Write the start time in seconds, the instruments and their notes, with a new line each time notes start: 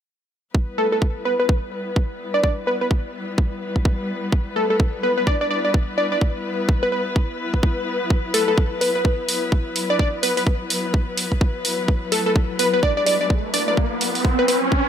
0.55 string section G3 B3 E4 B4, kick
0.78 digital synth lead A4
0.92 digital synth lead A4
1.02 kick
1.25 digital synth lead B4
1.40 digital synth lead B4
1.49 kick
1.96 kick
2.34 digital synth lead D5
2.43 digital synth lead D5, kick
2.67 digital synth lead B4
2.81 digital synth lead B4
2.91 kick
3.38 kick
3.76 kick
3.85 kick
4.32 kick
4.56 digital synth lead A4
4.70 digital synth lead A4
4.80 kick
5.03 digital synth lead B4
5.18 digital synth lead B4
5.27 digital synth lead D5, kick
5.41 digital synth lead D5
5.51 digital synth lead D5
5.65 digital synth lead D5
5.74 kick
5.98 digital synth lead D5
6.12 digital synth lead D5
6.21 kick
6.69 kick
6.83 digital synth lead B4
6.92 digital synth lead B4
7.16 kick
7.54 kick
7.63 kick
8.10 string section F#3, kick
8.34 digital synth lead A4, open hi-hat
8.48 digital synth lead A4
8.58 kick
8.81 digital synth lead B4, open hi-hat
8.95 digital synth lead B4
9.05 kick
9.29 open hi-hat
9.52 kick
9.76 open hi-hat
9.90 digital synth lead D5
9.99 digital synth lead D5, kick
10.23 digital synth lead B4, open hi-hat
10.37 digital synth lead B4, open hi-hat
10.47 kick
10.70 open hi-hat
10.94 kick
11.18 open hi-hat
11.32 kick
11.41 kick
11.65 open hi-hat
11.88 kick, riser
12.12 digital synth lead A4, open hi-hat
12.26 digital synth lead A4
12.36 kick
12.59 digital synth lead B4, open hi-hat
12.74 digital synth lead B4
12.83 digital synth lead D5, kick
12.97 digital synth lead D5
13.06 digital synth lead D5, open hi-hat
13.21 digital synth lead D5
13.30 kick
13.54 digital synth lead D5, open hi-hat
13.68 digital synth lead D5
13.77 kick
14.01 open hi-hat
14.15 open hi-hat
14.25 kick
14.39 digital synth lead B4
14.48 digital synth lead B4, open hi-hat
14.72 kick